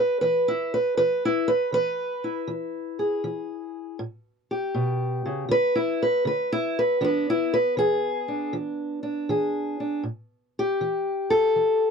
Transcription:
0.00 0.16 E3 medium
0.00 0.20 B4 medium
0.00 0.95 D5 medium
0.21 0.93 E3 medium
0.21 0.47 B4 medium
0.48 0.73 E4 medium
0.74 0.96 B4 medium
0.97 1.69 E3 medium
0.97 1.23 B4 loud
1.25 1.50 E4 medium
1.48 1.73 B4 loud
1.72 2.44 E3 medium
1.72 2.49 B4 loud
2.24 3.97 E4 soft
2.47 3.19 E3 medium
2.99 3.97 G#4 soft
3.24 3.95 E3 medium
3.99 4.70 A2 medium
4.51 5.48 G4 medium
4.74 5.25 B2 medium
5.26 5.48 C#3 medium
5.49 6.21 D3 medium
5.49 5.77 B4 loud
5.76 6.01 E4 loud
6.03 6.26 B4 medium
6.25 6.97 D3 medium
6.25 6.52 B4 medium
6.52 6.77 E4 loud
6.79 7.03 B4 medium
7.01 7.72 E3 medium
7.01 10.01 B3 medium
7.01 7.27 D4 medium
7.01 7.29 B4 medium
7.30 7.54 E4 loud
7.54 7.78 B4 loud
7.77 8.48 E3 medium
7.77 8.54 G#4 loud
8.28 9.02 D4 soft
8.53 9.24 E3 medium
9.03 9.79 D4 soft
9.29 10.00 E3 medium
9.29 10.02 G#4 medium
9.80 10.02 D4 soft
10.03 10.75 A2 medium
10.59 11.91 G4 medium
10.81 11.52 E3 medium
11.30 11.91 A4 medium
11.56 11.91 E3 medium

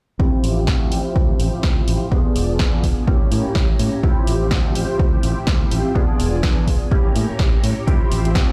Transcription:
0.19 0.29 D2 medium
0.19 3.05 F3 medium
0.19 2.07 C4 medium
0.19 2.08 E4 medium
0.19 2.08 F4 medium
0.19 2.08 G4 loud
0.19 kick loud
0.43 0.67 A1 medium
0.43 open hi-hat loud
0.67 0.91 D2 medium
0.67 kick loud
0.67 snare loud
0.91 1.01 A1 medium
0.91 open hi-hat medium
1.16 1.33 D2 medium
1.16 kick loud
1.39 1.49 A1 medium
1.39 open hi-hat medium
1.53 muted fingered electric bass stroke soft
1.63 1.81 D2 medium
1.63 kick loud
1.63 snare loud
1.87 1.97 A1 medium
1.87 open hi-hat medium
2.11 2.21 E2 medium
2.11 3.03 B3 medium
2.11 3.04 D4 medium
2.11 3.04 F4 medium
2.11 3.04 G#4 medium
2.11 kick loud
2.36 2.61 E1 medium
2.36 open hi-hat loud
2.59 2.85 E2 medium
2.59 kick loud
2.59 snare loud
2.83 2.93 E1 medium
2.83 kick medium
2.83 open hi-hat medium
3.07 3.25 A1 medium
3.07 3.99 A#3 medium
3.07 3.99 C#4 medium
3.07 4.00 E4 medium
3.07 4.03 G4 medium
3.07 4.00 G4 medium
3.07 4.03 C#5 medium
3.07 kick loud
3.32 3.41 A2 medium
3.32 open hi-hat loud
3.45 muted fingered electric bass stroke soft
3.55 3.73 A1 medium
3.55 kick loud
3.55 snare loud
3.79 3.89 A2 medium
3.79 open hi-hat medium
4.03 4.13 D2 medium
4.03 5.91 C4 medium
4.03 5.92 E4 medium
4.03 5.92 F4 medium
4.03 5.92 G4 loud
4.03 kick loud
4.27 4.51 A1 medium
4.27 open hi-hat loud
4.51 4.75 D2 medium
4.51 kick loud
4.51 snare loud
4.75 4.85 A1 medium
4.75 open hi-hat medium
4.99 5.17 D2 medium
4.99 kick loud
5.23 5.33 A1 medium
5.23 open hi-hat loud
5.47 5.65 D2 medium
5.47 kick loud
5.47 snare loud
5.71 5.81 A1 medium
5.71 open hi-hat medium
5.95 6.05 E2 medium
5.95 6.87 B3 medium
5.95 6.87 D4 medium
5.95 6.88 F4 medium
5.95 6.88 G#4 medium
5.95 6.91 D5 medium
5.95 6.91 G#5 medium
5.95 kick loud
6.19 6.45 E1 medium
6.19 open hi-hat loud
6.43 6.69 E2 medium
6.43 kick loud
6.43 snare loud
6.67 6.77 E1 medium
6.67 kick medium
6.67 open hi-hat medium
6.91 7.09 A1 medium
6.91 7.83 A#3 medium
6.91 7.84 C#4 medium
6.91 7.84 E4 medium
6.91 7.87 G4 medium
6.91 7.84 G4 medium
6.91 7.87 C#5 medium
6.91 7.87 A#5 medium
6.91 kick loud
7.16 7.25 A2 medium
7.16 open hi-hat loud
7.29 muted fingered electric bass stroke soft
7.39 7.57 A1 medium
7.39 kick loud
7.39 snare loud
7.63 7.73 A2 medium
7.63 open hi-hat medium
7.87 7.97 D2 medium
7.87 8.52 F3 medium
7.87 8.52 C4 medium
7.87 8.52 E4 medium
7.87 8.52 F4 medium
7.87 8.52 G4 loud
7.87 8.52 C5 medium
7.87 8.52 E5 medium
7.87 8.52 G5 medium
7.87 kick loud
7.87 closed hi-hat medium
7.87 tambourine soft
8.11 8.35 A1 medium
8.11 open hi-hat loud
8.11 tambourine medium
8.24 closed hi-hat soft
8.24 tambourine soft
8.24 high conga medium
8.35 8.52 D2 medium
8.35 kick loud
8.35 snare loud
8.35 closed hi-hat medium

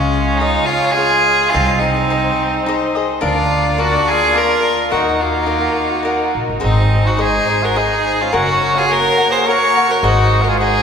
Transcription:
0.00 0.56 C#2 medium
0.00 0.40 G#3 medium
0.00 3.20 G#3 medium
0.00 0.39 C#4 medium
0.00 0.39 F4 medium
0.00 1.52 F4 medium
0.00 0.40 G#4 medium
0.00 0.40 C#5 medium
0.00 1.52 C#5 medium
0.00 0.39 F5 medium
0.38 0.69 G#3 medium
0.38 0.67 D#4 medium
0.38 0.69 F4 soft
0.38 0.69 G#4 medium
0.38 0.69 C#5 soft
0.38 0.67 F5 medium
0.66 0.96 C#4 medium
0.66 0.93 F4 medium
0.66 0.96 C#5 soft
0.66 0.96 F5 soft
0.71 0.97 G#4 soft
0.92 1.53 F4 medium
0.92 1.50 G#4 loud
0.96 1.53 F4 soft
0.96 1.53 G#4 medium
0.96 1.54 C#5 medium
0.96 1.54 F5 medium
1.49 1.80 C4 medium
1.49 1.80 F4 loud
1.53 2.28 C2 loud
1.53 2.09 D#4 medium
1.53 3.22 D#4 medium
1.53 2.09 G#4 medium
1.53 2.10 C5 medium
1.53 3.23 C5 medium
1.53 2.10 D#5 medium
1.79 2.95 C4 medium
1.79 2.94 D#4 medium
2.10 2.65 D#4 soft
2.10 2.67 G#4 medium
2.10 2.67 C5 medium
2.10 2.67 D#5 medium
2.66 2.96 D#4 medium
2.66 2.95 G#4 medium
2.66 2.95 C5 medium
2.66 2.94 D#5 medium
2.95 3.21 G#4 soft
2.95 3.21 C5 soft
2.95 3.21 D#5 medium
3.21 3.96 D2 loud
3.21 4.90 A#3 medium
3.21 3.77 D4 medium
3.21 3.81 D4 medium
3.21 3.81 F4 medium
3.21 4.91 F4 medium
3.21 3.78 A#4 medium
3.21 3.78 D5 medium
3.21 4.91 D5 medium
3.21 3.78 F5 medium
3.78 4.33 D4 soft
3.78 4.12 D4 medium
3.78 4.09 F#4 medium
3.78 4.34 A#4 medium
3.78 4.34 D5 medium
3.78 4.34 F5 medium
4.08 4.36 F4 medium
4.08 4.38 G#4 loud
4.34 4.90 D4 medium
4.34 4.92 F4 medium
4.34 4.90 A#4 medium
4.34 4.92 D5 medium
4.34 4.91 F5 medium
4.90 5.66 D#2 medium
4.90 5.46 D#4 medium
4.90 6.62 D#4 medium
4.90 5.24 D#4 medium
4.90 5.22 F#4 medium
4.90 6.62 F#4 medium
4.90 5.45 A#4 medium
4.90 6.62 A#4 medium
4.90 5.47 D#5 medium
4.90 5.46 F#5 medium
5.20 6.36 A#3 medium
5.20 6.35 F4 medium
5.46 6.03 D#4 soft
5.46 6.04 A#4 soft
5.46 6.05 D#5 medium
6.03 6.59 D#4 medium
6.03 6.60 A#4 medium
6.03 6.60 D#5 medium
6.03 6.61 F#5 medium
6.35 6.48 A#1 medium
6.49 6.62 G#1 medium
6.60 7.08 C4 medium
6.60 7.16 D#4 medium
6.60 7.08 D#4 medium
6.60 7.17 G#4 medium
6.60 7.17 C5 medium
6.60 7.18 D#5 medium
6.64 7.38 G#1 medium
6.64 8.33 G#3 medium
6.64 8.33 D#4 medium
6.64 8.33 C5 medium
7.06 7.21 D#4 medium
7.06 7.22 F#4 medium
7.17 7.48 D#4 soft
7.17 7.64 D#4 medium
7.17 7.49 G#4 soft
7.17 7.66 G#4 medium
7.17 7.49 C5 soft
7.17 7.47 D#5 medium
7.49 7.75 G#4 soft
7.49 7.75 C5 soft
7.49 7.75 D#5 soft
7.63 7.80 F#4 medium
7.63 7.79 A#4 medium
7.76 8.32 D#4 medium
7.76 8.23 D#4 medium
7.76 8.32 G#4 medium
7.76 8.23 G#4 medium
7.76 8.33 C5 medium
7.76 8.34 D#5 medium
8.21 8.33 C#4 medium
8.21 8.36 F4 medium
8.32 9.07 F#1 medium
8.32 10.01 A#3 medium
8.32 8.77 C#4 medium
8.32 8.87 F#4 medium
8.32 8.79 F#4 medium
8.32 8.87 A#4 medium
8.32 10.82 A#4 medium
8.32 10.01 C#5 medium
8.32 8.88 C#5 medium
8.32 8.89 F#5 medium
8.76 8.88 F4 medium
8.76 8.93 G#4 medium
8.87 9.33 F#4 medium
8.87 9.18 F#4 soft
8.87 9.18 A#4 soft
8.87 9.18 C#5 medium
8.87 9.16 F#5 medium
8.91 9.33 A#4 loud
9.18 9.47 A#4 soft
9.18 9.46 C#5 soft
9.18 9.46 F#5 soft
9.31 9.48 G#4 medium
9.31 9.48 C5 medium
9.46 9.77 F#4 medium
9.46 9.90 A#4 medium
9.46 9.77 A#4 medium
9.46 9.93 C#5 medium
9.46 9.77 C#5 medium
9.46 9.75 F#5 medium
9.77 10.03 A#4 soft
9.77 10.04 C#5 soft
9.77 10.04 F#5 soft
9.89 10.05 F#4 medium
9.89 10.06 A#4 medium
10.03 10.77 G#1 medium
10.03 10.82 G#3 medium
10.03 10.44 D#4 medium
10.03 10.59 F#4 medium
10.03 10.45 F#4 medium
10.03 10.61 G#4 medium
10.03 10.82 C5 medium
10.03 10.60 C5 medium
10.03 10.60 D#5 medium
10.42 10.49 F#4 soft
10.42 10.50 A#4 medium
10.48 10.59 F4 medium
10.48 10.59 G#4 medium
10.60 10.82 D#4 medium
10.60 10.82 F#4 medium
10.60 10.82 G#4 medium
10.60 10.82 C5 soft
10.60 10.82 D#5 medium

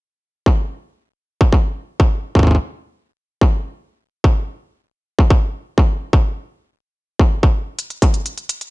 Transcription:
0.46 kick loud
1.41 kick medium
1.53 kick medium
2.00 kick loud
2.35 kick medium
2.39 kick medium
2.43 kick medium
2.47 kick soft
2.51 kick soft
2.55 kick soft
3.41 kick loud
4.24 kick loud
5.19 kick medium
5.30 kick loud
5.78 kick loud
6.13 kick loud
7.19 kick loud
7.43 kick medium
7.79 closed hi-hat medium
7.90 closed hi-hat soft
8.02 kick loud
8.02 closed hi-hat medium
8.14 closed hi-hat soft
8.26 closed hi-hat medium
8.38 closed hi-hat soft
8.49 closed hi-hat medium
8.61 closed hi-hat soft

